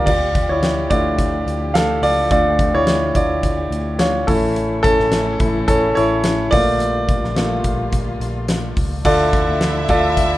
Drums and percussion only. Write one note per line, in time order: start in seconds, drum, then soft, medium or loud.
0.07 kick loud
0.07 crash medium
0.35 kick medium
0.35 closed hi-hat medium
0.63 snare loud
0.63 closed hi-hat medium
0.91 kick medium
0.91 closed hi-hat medium
1.18 kick medium
1.18 closed hi-hat medium
1.48 closed hi-hat medium
1.75 snare loud
1.75 closed hi-hat loud
2.03 open hi-hat medium
2.31 kick loud
2.31 closed hi-hat medium
2.59 kick medium
2.59 closed hi-hat medium
2.87 snare medium
2.87 closed hi-hat medium
3.15 kick medium
3.15 closed hi-hat medium
3.43 kick medium
3.43 closed hi-hat medium
3.72 closed hi-hat medium
3.99 snare loud
3.99 closed hi-hat loud
4.28 kick loud
4.28 open hi-hat medium
4.56 closed hi-hat medium
4.84 kick loud
4.84 closed hi-hat medium
5.00 snare soft
5.12 snare medium
5.12 closed hi-hat medium
5.40 kick loud
5.40 closed hi-hat medium
5.68 kick medium
5.68 closed hi-hat medium
5.97 closed hi-hat medium
6.24 snare loud
6.24 closed hi-hat loud
6.52 kick loud
6.52 open hi-hat medium
6.80 closed hi-hat medium
7.09 kick loud
7.09 closed hi-hat medium
7.24 snare soft
7.37 snare loud
7.37 closed hi-hat medium
7.64 kick medium
7.64 closed hi-hat medium
7.92 kick medium
7.92 closed hi-hat medium
8.21 closed hi-hat medium
8.48 snare loud
8.48 closed hi-hat loud
8.77 kick medium
8.77 open hi-hat medium
9.05 kick loud
9.05 crash medium
9.33 kick loud
9.33 closed hi-hat medium
9.61 snare loud
9.61 closed hi-hat medium
9.89 kick medium
9.89 closed hi-hat medium
10.17 kick medium
10.17 closed hi-hat loud